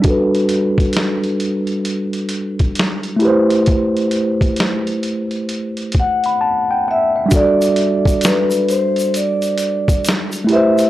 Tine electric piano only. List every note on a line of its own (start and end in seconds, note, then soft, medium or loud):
0.00 3.16 G3 medium
0.00 3.17 D4 medium
0.05 3.19 F#4 medium
0.05 3.20 A4 medium
0.10 3.22 B4 medium
3.16 6.34 A3 medium
3.16 6.35 E4 medium
3.22 6.36 G4 medium
3.22 6.38 B4 medium
3.28 6.39 C5 medium
6.26 6.41 B5 medium
6.41 6.68 A5 medium
6.71 6.86 G5 medium
6.88 7.15 F#5 medium
7.16 7.59 E5 medium
7.26 10.43 G3 medium
7.26 10.44 D4 medium
7.31 10.46 F#4 medium
7.31 10.47 A4 medium
7.37 10.48 D5 medium
10.44 10.90 A3 medium
10.44 10.90 E4 medium
10.50 10.90 G4 medium
10.50 10.90 B4 medium
10.56 10.90 C5 medium